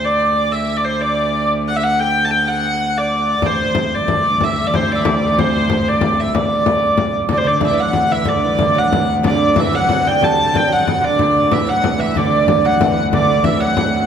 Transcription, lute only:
0, 0, Header, 1, 2, 480
1, 0, Start_track
1, 0, Tempo, 323276
1, 759, Time_signature, 6, 3, 24, 8
1, 20881, End_track
2, 0, Start_track
2, 0, Title_t, "Lute"
2, 0, Program_c, 0, 24
2, 10851, Note_on_c, 0, 50, 61
2, 10949, Note_off_c, 0, 50, 0
2, 11045, Note_on_c, 0, 50, 69
2, 11441, Note_off_c, 0, 50, 0
2, 11447, Note_on_c, 0, 52, 63
2, 11569, Note_on_c, 0, 54, 69
2, 11574, Note_off_c, 0, 52, 0
2, 12041, Note_on_c, 0, 52, 64
2, 12066, Note_off_c, 0, 54, 0
2, 12259, Note_off_c, 0, 52, 0
2, 12265, Note_on_c, 0, 50, 69
2, 12527, Note_off_c, 0, 50, 0
2, 12535, Note_on_c, 0, 52, 61
2, 12765, Note_off_c, 0, 52, 0
2, 12771, Note_on_c, 0, 50, 71
2, 12992, Note_on_c, 0, 54, 70
2, 13020, Note_off_c, 0, 50, 0
2, 13504, Note_off_c, 0, 54, 0
2, 13710, Note_on_c, 0, 50, 67
2, 14216, Note_off_c, 0, 50, 0
2, 14227, Note_on_c, 0, 52, 79
2, 14455, Note_on_c, 0, 54, 74
2, 14467, Note_off_c, 0, 52, 0
2, 14701, Note_off_c, 0, 54, 0
2, 14724, Note_on_c, 0, 54, 75
2, 14941, Note_off_c, 0, 54, 0
2, 14947, Note_on_c, 0, 55, 74
2, 15163, Note_on_c, 0, 57, 81
2, 15186, Note_off_c, 0, 55, 0
2, 15613, Note_off_c, 0, 57, 0
2, 15646, Note_on_c, 0, 55, 75
2, 15848, Note_off_c, 0, 55, 0
2, 15854, Note_on_c, 0, 54, 77
2, 16349, Note_on_c, 0, 50, 65
2, 16366, Note_off_c, 0, 54, 0
2, 16606, Note_off_c, 0, 50, 0
2, 16622, Note_on_c, 0, 50, 68
2, 17090, Note_off_c, 0, 50, 0
2, 17096, Note_on_c, 0, 52, 76
2, 17328, Note_on_c, 0, 54, 75
2, 17339, Note_off_c, 0, 52, 0
2, 17522, Note_off_c, 0, 54, 0
2, 17539, Note_on_c, 0, 54, 70
2, 17795, Note_on_c, 0, 52, 66
2, 17800, Note_off_c, 0, 54, 0
2, 18047, Note_off_c, 0, 52, 0
2, 18069, Note_on_c, 0, 50, 68
2, 18779, Note_on_c, 0, 54, 76
2, 18797, Note_off_c, 0, 50, 0
2, 19050, Note_off_c, 0, 54, 0
2, 19090, Note_on_c, 0, 52, 65
2, 19300, Note_off_c, 0, 52, 0
2, 19498, Note_on_c, 0, 50, 68
2, 19935, Note_off_c, 0, 50, 0
2, 19997, Note_on_c, 0, 52, 72
2, 20202, Note_on_c, 0, 54, 75
2, 20224, Note_off_c, 0, 52, 0
2, 20881, Note_off_c, 0, 54, 0
2, 20881, End_track
0, 0, End_of_file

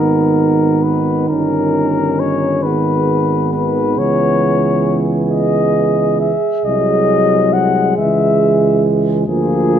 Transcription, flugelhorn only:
0, 0, Header, 1, 2, 480
1, 0, Start_track
1, 0, Key_signature, 5, "minor"
1, 0, Tempo, 896861
1, 693, Time_signature, 6, 3, 24, 8
1, 2610, Tempo, 879765
1, 5293, End_track
2, 0, Start_track
2, 0, Title_t, "Flugelhorn"
2, 0, Program_c, 0, 56
2, 0, Note_on_c, 0, 70, 51
2, 445, Note_on_c, 0, 71, 48
2, 453, Note_off_c, 0, 70, 0
2, 685, Note_off_c, 0, 71, 0
2, 688, Note_on_c, 0, 70, 52
2, 1176, Note_on_c, 0, 73, 58
2, 1184, Note_off_c, 0, 70, 0
2, 1407, Note_on_c, 0, 71, 50
2, 1415, Note_off_c, 0, 73, 0
2, 1886, Note_off_c, 0, 71, 0
2, 1890, Note_on_c, 0, 71, 51
2, 2133, Note_on_c, 0, 73, 62
2, 2141, Note_off_c, 0, 71, 0
2, 2704, Note_off_c, 0, 73, 0
2, 2848, Note_on_c, 0, 75, 53
2, 3311, Note_off_c, 0, 75, 0
2, 3333, Note_on_c, 0, 76, 54
2, 3575, Note_on_c, 0, 75, 62
2, 3583, Note_off_c, 0, 76, 0
2, 4058, Note_on_c, 0, 78, 65
2, 4066, Note_off_c, 0, 75, 0
2, 4296, Note_off_c, 0, 78, 0
2, 4299, Note_on_c, 0, 76, 57
2, 4763, Note_off_c, 0, 76, 0
2, 5005, Note_on_c, 0, 68, 69
2, 5293, Note_off_c, 0, 68, 0
2, 5293, End_track
0, 0, End_of_file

